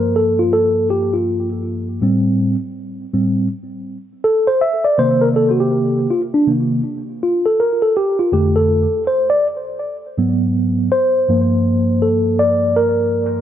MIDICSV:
0, 0, Header, 1, 2, 480
1, 0, Start_track
1, 0, Tempo, 740741
1, 1313, Time_signature, 4, 2, 24, 8
1, 8690, End_track
2, 0, Start_track
2, 0, Title_t, "Tine electric piano"
2, 0, Program_c, 0, 4
2, 0, Note_on_c, 0, 43, 60
2, 0, Note_on_c, 0, 53, 54
2, 0, Note_on_c, 0, 58, 65
2, 0, Note_on_c, 0, 70, 92
2, 104, Note_on_c, 0, 69, 82
2, 121, Note_off_c, 0, 70, 0
2, 253, Note_on_c, 0, 65, 80
2, 261, Note_off_c, 0, 69, 0
2, 343, Note_off_c, 0, 65, 0
2, 344, Note_on_c, 0, 69, 90
2, 571, Note_off_c, 0, 69, 0
2, 585, Note_on_c, 0, 67, 85
2, 737, Note_on_c, 0, 65, 55
2, 742, Note_off_c, 0, 67, 0
2, 962, Note_off_c, 0, 65, 0
2, 1287, Note_off_c, 0, 43, 0
2, 1289, Note_off_c, 0, 53, 0
2, 1292, Note_off_c, 0, 58, 0
2, 1307, Note_on_c, 0, 45, 65
2, 1311, Note_on_c, 0, 55, 56
2, 1316, Note_on_c, 0, 60, 61
2, 1651, Note_off_c, 0, 45, 0
2, 1653, Note_off_c, 0, 55, 0
2, 1655, Note_off_c, 0, 60, 0
2, 2030, Note_on_c, 0, 45, 43
2, 2032, Note_on_c, 0, 55, 43
2, 2034, Note_on_c, 0, 60, 49
2, 2247, Note_off_c, 0, 45, 0
2, 2249, Note_off_c, 0, 55, 0
2, 2250, Note_off_c, 0, 60, 0
2, 2749, Note_on_c, 0, 69, 92
2, 2899, Note_on_c, 0, 72, 102
2, 2904, Note_off_c, 0, 69, 0
2, 2990, Note_on_c, 0, 76, 95
2, 2995, Note_off_c, 0, 72, 0
2, 3139, Note_on_c, 0, 74, 95
2, 3144, Note_off_c, 0, 76, 0
2, 3226, Note_off_c, 0, 74, 0
2, 3227, Note_on_c, 0, 48, 62
2, 3231, Note_on_c, 0, 51, 51
2, 3233, Note_on_c, 0, 58, 67
2, 3233, Note_on_c, 0, 72, 116
2, 3379, Note_on_c, 0, 70, 97
2, 3386, Note_off_c, 0, 72, 0
2, 3421, Note_off_c, 0, 70, 0
2, 3475, Note_on_c, 0, 69, 98
2, 3568, Note_on_c, 0, 66, 66
2, 3569, Note_off_c, 0, 69, 0
2, 3623, Note_off_c, 0, 66, 0
2, 3630, Note_on_c, 0, 67, 80
2, 3924, Note_off_c, 0, 48, 0
2, 3926, Note_off_c, 0, 51, 0
2, 3927, Note_off_c, 0, 58, 0
2, 3956, Note_on_c, 0, 65, 71
2, 3968, Note_off_c, 0, 67, 0
2, 4022, Note_off_c, 0, 65, 0
2, 4109, Note_on_c, 0, 62, 74
2, 4194, Note_on_c, 0, 48, 49
2, 4196, Note_on_c, 0, 51, 43
2, 4197, Note_on_c, 0, 58, 54
2, 4215, Note_off_c, 0, 62, 0
2, 4410, Note_off_c, 0, 48, 0
2, 4411, Note_off_c, 0, 51, 0
2, 4411, Note_off_c, 0, 58, 0
2, 4685, Note_on_c, 0, 65, 75
2, 4832, Note_off_c, 0, 65, 0
2, 4832, Note_on_c, 0, 69, 83
2, 4921, Note_off_c, 0, 69, 0
2, 4924, Note_on_c, 0, 70, 87
2, 5057, Note_off_c, 0, 70, 0
2, 5069, Note_on_c, 0, 69, 83
2, 5151, Note_off_c, 0, 69, 0
2, 5162, Note_on_c, 0, 67, 96
2, 5308, Note_on_c, 0, 65, 72
2, 5310, Note_off_c, 0, 67, 0
2, 5391, Note_off_c, 0, 65, 0
2, 5392, Note_on_c, 0, 41, 55
2, 5397, Note_on_c, 0, 50, 50
2, 5400, Note_on_c, 0, 57, 56
2, 5400, Note_on_c, 0, 67, 88
2, 5546, Note_on_c, 0, 69, 92
2, 5549, Note_off_c, 0, 67, 0
2, 5734, Note_off_c, 0, 41, 0
2, 5736, Note_off_c, 0, 50, 0
2, 5738, Note_off_c, 0, 57, 0
2, 5852, Note_off_c, 0, 69, 0
2, 5879, Note_on_c, 0, 72, 85
2, 6014, Note_off_c, 0, 72, 0
2, 6025, Note_on_c, 0, 74, 99
2, 6132, Note_off_c, 0, 74, 0
2, 6594, Note_on_c, 0, 44, 57
2, 6597, Note_on_c, 0, 54, 48
2, 6602, Note_on_c, 0, 59, 63
2, 7050, Note_off_c, 0, 44, 0
2, 7051, Note_off_c, 0, 54, 0
2, 7054, Note_off_c, 0, 59, 0
2, 7074, Note_on_c, 0, 72, 99
2, 7313, Note_on_c, 0, 43, 60
2, 7317, Note_on_c, 0, 53, 46
2, 7321, Note_on_c, 0, 58, 63
2, 7790, Note_on_c, 0, 69, 76
2, 7816, Note_off_c, 0, 72, 0
2, 8030, Note_on_c, 0, 74, 101
2, 8039, Note_off_c, 0, 69, 0
2, 8271, Note_on_c, 0, 70, 98
2, 8279, Note_off_c, 0, 74, 0
2, 8690, Note_off_c, 0, 43, 0
2, 8690, Note_off_c, 0, 53, 0
2, 8690, Note_off_c, 0, 58, 0
2, 8690, Note_off_c, 0, 70, 0
2, 8690, End_track
0, 0, End_of_file